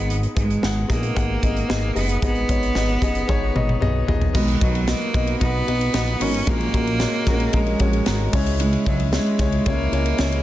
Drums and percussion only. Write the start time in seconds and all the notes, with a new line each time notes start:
0.10 closed hi-hat
0.23 closed hi-hat
0.36 kick, closed hi-hat
0.50 closed hi-hat
0.63 snare
0.90 kick, snare, closed hi-hat
1.03 closed hi-hat
1.16 kick, closed hi-hat
1.43 kick, closed hi-hat
1.56 closed hi-hat
1.70 snare
1.96 open hi-hat
2.09 closed hi-hat
2.22 kick, closed hi-hat
2.35 closed hi-hat
2.49 kick, closed hi-hat
2.63 closed hi-hat
2.75 snare
2.89 closed hi-hat
3.02 kick, closed hi-hat
3.15 closed hi-hat
3.29 kick, high tom
3.56 mid tom
3.69 mid tom
3.82 mid tom
4.08 floor tom
4.21 floor tom
4.35 kick, crash
4.48 ride
4.61 kick, ride
4.75 ride
4.88 snare, ride
5.01 ride
5.14 kick, ride
5.27 ride
5.41 kick, ride
5.68 ride
5.81 ride
5.94 snare, ride
6.07 ride
6.21 open hi-hat, ride
6.34 ride
6.47 kick, ride
6.60 ride
6.74 kick, ride
6.87 ride
7.00 snare, ride
7.26 kick, snare, ride
7.40 ride
7.53 kick, ride
7.67 ride
7.79 kick, ride
7.93 ride
8.06 snare, ride
8.33 kick, open hi-hat, ride
8.46 ride
8.60 hi-hat pedal, ride
8.73 ride
8.86 kick, ride
9.00 ride
9.13 snare, ride
9.26 ride
9.39 kick, snare, ride
9.52 ride
9.66 kick, ride
9.93 ride
10.05 ride
10.18 snare, ride
10.32 ride